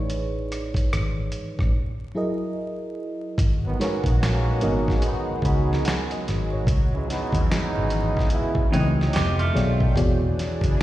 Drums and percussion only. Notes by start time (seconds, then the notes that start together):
0.10 closed hi-hat
0.52 cross-stick, closed hi-hat
0.74 kick, closed hi-hat
0.93 cross-stick, closed hi-hat
1.32 closed hi-hat
1.59 kick, cross-stick
3.38 kick, closed hi-hat
3.81 snare, closed hi-hat
4.04 kick, closed hi-hat
4.23 snare, closed hi-hat
4.61 closed hi-hat
4.88 kick, snare
5.02 closed hi-hat
5.42 kick, closed hi-hat
5.73 snare
5.85 snare, closed hi-hat
6.11 closed hi-hat
6.28 snare, closed hi-hat
6.67 kick, closed hi-hat
7.10 snare, closed hi-hat
7.32 kick, closed hi-hat
7.51 snare, closed hi-hat
7.90 closed hi-hat
8.17 kick, snare
8.30 closed hi-hat
8.55 kick
8.74 closed hi-hat
9.01 snare
9.13 snare, closed hi-hat
9.39 closed hi-hat
9.57 snare, closed hi-hat
9.80 kick
9.96 kick, closed hi-hat
10.39 snare, closed hi-hat
10.61 kick, closed hi-hat